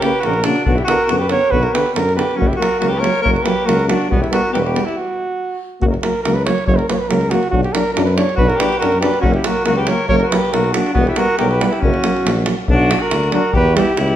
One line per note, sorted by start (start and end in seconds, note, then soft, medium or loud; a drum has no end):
0.00 0.12 C#3 medium
0.00 0.11 A#3 medium
0.00 0.21 G4 medium
0.00 davul high medium
0.05 0.27 B4 medium
0.20 0.42 F#4 medium
0.20 davul high soft
0.24 0.48 A#1 medium
0.24 0.33 C#3 medium
0.24 0.33 A#3 medium
0.24 0.46 A#4 loud
0.33 davul high soft
0.42 0.54 C#3 medium
0.42 0.54 A#3 medium
0.42 0.63 D4 medium
0.42 davul high medium
0.46 0.66 F#4 medium
0.56 davul high soft
0.64 0.79 B1 medium
0.64 0.75 D3 medium
0.64 0.75 B3 medium
0.64 0.76 D4 medium
0.64 0.80 F#4 medium
0.64 davul low loud
0.75 0.83 E4 medium
0.75 0.87 G4 medium
0.75 davul high soft
0.84 0.96 D3 medium
0.84 1.04 F#4 medium
0.88 0.97 B3 medium
0.88 1.09 A#4 loud
0.88 davul high medium
1.04 1.17 F#4 medium
1.09 1.35 F#2 medium
1.09 1.18 D3 medium
1.09 1.18 B3 medium
1.09 1.20 A#4 medium
1.09 davul high medium
1.18 1.28 G4 medium
1.18 1.30 B4 medium
1.29 1.39 D3 soft
1.29 1.39 B3 medium
1.29 1.51 A#4 medium
1.29 1.53 C#5 loud
1.29 davul high medium
1.41 davul high soft
1.50 1.66 B1 medium
1.50 1.61 D3 medium
1.50 1.61 B3 medium
1.50 1.59 F#4 medium
1.50 1.65 B4 loud
1.50 davul low medium
1.59 1.74 F#4 medium
1.63 1.76 A#4 medium
1.63 davul high soft
1.73 1.84 D3 medium
1.73 1.82 B3 medium
1.73 1.89 G4 medium
1.73 1.93 B4 medium
1.73 davul high medium
1.86 1.91 G4 soft
1.86 davul high soft
1.93 2.20 F#2 medium
1.93 2.05 D3 soft
1.93 2.03 B3 medium
1.93 2.15 A#4 medium
1.93 1.97 B4 medium
1.93 davul high medium
2.09 davul high soft
2.14 2.25 D3 soft
2.14 2.25 B3 medium
2.14 2.37 G4 medium
2.14 2.40 B4 medium
2.19 davul high medium
2.31 davul high soft
2.35 2.46 F#3 soft
2.35 2.46 A#3 soft
2.35 2.49 C#4 medium
2.35 2.50 F#4 medium
2.40 2.52 F#1 medium
2.40 davul low medium
2.47 2.55 E4 soft
2.47 2.60 G4 medium
2.53 2.78 F#4 medium
2.53 davul high soft
2.58 2.69 F#3 soft
2.58 2.67 A#3 medium
2.58 2.81 A#4 medium
2.62 davul high medium
2.79 2.90 F#3 medium
2.79 2.89 A#3 medium
2.79 2.90 F#4 medium
2.79 2.94 A#4 medium
2.79 davul high medium
2.83 3.07 C#2 medium
2.88 3.00 G4 medium
2.92 3.02 B4 medium
2.92 davul high soft
2.98 3.10 A#3 medium
2.98 3.21 A#4 medium
2.98 3.24 C#5 loud
3.04 3.13 F#3 medium
3.04 davul high medium
3.15 davul high soft
3.21 3.37 F#1 medium
3.21 3.34 F#3 medium
3.21 3.32 A#3 medium
3.21 3.32 A#4 medium
3.21 3.32 C#5 medium
3.26 davul low medium
3.32 3.42 F#4 soft
3.32 3.44 A#4 medium
3.36 davul high soft
3.41 3.52 A#3 medium
3.41 3.66 G4 medium
3.41 3.67 B4 medium
3.46 3.55 F#3 medium
3.46 davul high medium
3.65 3.76 F#3 medium
3.65 3.75 A#3 medium
3.65 3.86 F#4 medium
3.65 3.88 A#4 loud
3.65 davul high medium
3.69 3.92 C#2 medium
3.79 davul high soft
3.87 3.98 F#3 medium
3.87 3.96 A#3 medium
3.87 4.08 D4 medium
3.87 4.09 F#4 medium
3.87 davul high medium
4.02 davul high soft
4.09 4.24 E1 medium
4.09 4.19 G3 medium
4.09 4.18 B3 medium
4.09 4.23 B3 medium
4.09 4.22 F#4 medium
4.09 davul low medium
4.20 4.32 E4 medium
4.20 4.30 G4 medium
4.20 davul high soft
4.31 4.40 G3 medium
4.31 4.39 B3 medium
4.31 4.52 F#4 medium
4.31 4.51 A#4 medium
4.31 davul high medium
4.52 4.78 E1 medium
4.52 4.63 G3 medium
4.52 4.61 B3 medium
4.52 4.56 G4 medium
4.52 4.58 A#4 medium
4.52 davul high soft
4.56 4.58 G4 medium
4.56 4.59 B4 medium
4.65 4.86 G4 medium
4.65 4.88 B4 medium
4.65 davul high soft
4.74 4.83 G3 medium
4.74 4.83 B3 medium
4.74 davul high medium
4.85 4.96 E4 medium
4.85 4.98 G4 medium
4.85 davul high soft
4.97 5.61 F#4 medium
5.81 5.95 F#1 medium
5.81 5.90 F#3 soft
5.81 5.90 A#3 medium
5.81 5.86 F#4 loud
5.81 davul low medium
5.91 5.93 A#4 medium
5.91 davul high soft
6.02 6.12 F#3 medium
6.02 6.12 A#3 medium
6.02 6.22 A#4 medium
6.02 davul high medium
6.23 6.49 C#2 medium
6.23 6.34 A#3 medium
6.23 6.35 A#4 medium
6.23 davul high medium
6.27 6.35 F#3 medium
6.34 6.44 B4 medium
6.34 davul high soft
6.45 6.56 F#3 medium
6.45 6.56 A#3 medium
6.45 6.65 C#5 medium
6.45 davul high medium
6.58 davul high soft
6.67 6.80 F#1 loud
6.67 6.77 F#3 medium
6.67 6.77 A#3 medium
6.67 6.79 C#5 loud
6.67 davul low medium
6.77 6.89 A#4 medium
6.77 davul high soft
6.89 6.98 F#3 medium
6.89 6.98 A#3 medium
6.89 6.95 B4 medium
6.89 davul high medium
6.94 7.01 C#5 medium
6.99 7.10 B4 medium
7.09 7.35 C#2 medium
7.09 7.18 F#3 medium
7.09 7.19 A#3 medium
7.09 7.32 A#4 medium
7.09 davul high medium
7.21 davul high soft
7.30 7.40 F#3 medium
7.30 7.41 A#3 medium
7.30 7.50 F#4 medium
7.30 davul high medium
7.43 davul high soft
7.50 7.65 B1 medium
7.50 7.60 F#3 medium
7.50 7.62 D4 medium
7.50 7.62 F#4 loud
7.50 davul low medium
7.64 7.74 G4 medium
7.64 davul high soft
7.73 7.83 F#3 medium
7.73 7.83 D4 medium
7.73 7.92 A#4 medium
7.73 davul high medium
7.93 8.04 F#3 medium
7.93 8.04 D4 medium
7.93 8.04 A#4 medium
7.97 8.21 F#2 loud
7.97 davul high medium
8.05 8.18 B4 medium
8.05 davul high soft
8.17 8.26 F#3 medium
8.17 8.25 D4 medium
8.17 8.37 C#5 loud
8.17 davul high medium
8.29 davul high soft
8.35 8.47 D4 medium
8.35 8.44 F#4 medium
8.35 8.50 B4 loud
8.35 davul low medium
8.39 8.51 B1 medium
8.39 8.48 F#3 medium
8.44 8.57 F#4 medium
8.48 8.61 A#4 medium
8.48 davul high soft
8.55 8.68 D4 medium
8.55 8.78 G4 medium
8.55 8.79 B4 medium
8.60 8.70 F#3 medium
8.60 davul high medium
8.73 davul high soft
8.78 8.91 F#3 medium
8.78 8.90 D4 medium
8.78 8.99 F#4 medium
8.78 9.00 A#4 loud
8.82 9.06 F#2 medium
8.82 davul high medium
8.92 davul high soft
9.00 9.12 F#3 medium
9.00 9.10 D4 medium
9.00 9.19 G4 medium
9.00 9.21 B4 medium
9.00 davul high medium
9.14 davul high soft
9.20 9.32 A#3 medium
9.20 9.32 C#4 medium
9.20 9.33 F#4 loud
9.20 davul low medium
9.24 9.36 F#1 loud
9.24 9.33 F#3 medium
9.33 9.46 E4 medium
9.33 9.48 G4 medium
9.33 davul high soft
9.44 9.55 F#3 medium
9.44 9.53 A#3 medium
9.44 9.66 F#4 medium
9.44 9.65 A#4 medium
9.44 davul high medium
9.66 9.91 C#2 medium
9.66 9.75 F#3 medium
9.66 9.75 A#3 medium
9.66 9.76 F#4 medium
9.66 9.76 A#4 medium
9.66 davul high medium
9.76 9.87 G4 medium
9.76 9.87 B4 medium
9.76 davul high soft
9.87 9.96 F#3 medium
9.87 9.98 A#3 medium
9.87 10.08 A#4 medium
9.87 10.08 C#5 medium
9.87 davul high medium
9.98 davul high soft
10.08 10.23 F#1 medium
10.08 10.18 F#3 medium
10.08 10.18 A#3 medium
10.08 10.19 A#4 medium
10.08 10.18 C#5 loud
10.08 davul low medium
10.18 10.30 A#4 medium
10.18 davul high soft
10.22 10.35 F#4 medium
10.29 10.40 F#3 medium
10.29 10.41 A#3 medium
10.29 10.54 B4 medium
10.29 davul high medium
10.33 10.54 G4 medium
10.52 10.77 B1 medium
10.52 10.61 F#3 medium
10.52 10.62 A#3 medium
10.52 10.75 F#4 medium
10.52 10.74 A#4 medium
10.52 davul high medium
10.64 davul high soft
10.72 10.82 F#3 medium
10.72 10.84 A#3 medium
10.72 10.93 D4 medium
10.72 10.93 F#4 medium
10.72 davul high medium
10.86 davul high soft
10.93 11.08 E1 loud
10.93 11.04 G3 medium
10.93 11.05 B3 medium
10.93 11.04 B3 medium
10.93 11.05 F#4 medium
10.93 davul low medium
11.06 11.19 E4 medium
11.06 11.19 G4 medium
11.06 davul high soft
11.16 11.26 G3 medium
11.16 11.26 B3 medium
11.16 11.37 F#4 medium
11.16 11.38 A#4 medium
11.16 davul high medium
11.38 11.64 B1 medium
11.38 11.48 G3 medium
11.38 11.47 B3 medium
11.38 11.47 G4 medium
11.38 11.49 A#4 medium
11.38 davul high medium
11.48 11.70 G4 medium
11.48 11.75 B4 medium
11.48 davul high soft
11.61 11.70 G3 medium
11.61 11.70 B3 medium
11.61 davul high medium
11.68 11.82 E4 medium
11.73 11.85 G4 medium
11.73 davul high soft
11.80 11.95 F#1 loud
11.80 11.92 F#3 medium
11.80 11.91 A#3 medium
11.80 12.45 C#4 medium
11.80 12.47 F#4 medium
11.80 davul low medium
11.94 davul high soft
12.03 12.13 F#3 medium
12.03 12.11 A#3 medium
12.03 davul high medium
12.17 davul high soft
12.23 12.49 A#1 medium
12.23 12.32 F#3 soft
12.23 12.33 A#3 medium
12.23 davul high medium
12.36 davul high soft
12.46 12.54 F#3 medium
12.46 12.55 A#3 medium
12.46 davul high medium
12.68 12.92 B1 loud
12.68 13.01 D4 medium
12.68 13.03 F#4 loud
12.68 davul low medium
12.88 12.97 F#3 soft
12.88 12.98 D4 medium
12.88 davul high medium
12.99 13.32 F#4 medium
12.99 13.33 A#4 medium
13.11 13.35 D2 medium
13.11 davul high medium
13.23 davul high soft
13.31 13.40 F#3 medium
13.31 13.41 D4 medium
13.31 13.52 F#4 medium
13.31 13.53 A#4 medium
13.31 davul high medium
13.53 13.79 E2 medium
13.53 13.76 G4 medium
13.53 13.79 B4 loud
13.53 davul low medium
13.75 13.84 G3 medium
13.75 13.84 B3 medium
13.75 13.94 E4 medium
13.75 13.98 G4 loud
13.75 davul high medium
13.94 14.16 C#2 medium
13.94 14.16 E4 medium
13.94 davul high medium
14.01 14.16 G4 loud
14.08 davul high soft